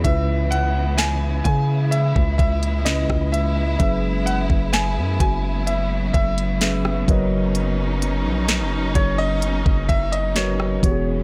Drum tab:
HH |x-x-x-x-x-xxx-x-|x-x-x-x-x-xxx-x-|x-x-x-x-x-xxx-x-|
SD |----o-------or--|----o-------or--|----o-------or--|
BD |o-----o--oo--o--|o--o--o---o---o-|------o--oo---o-|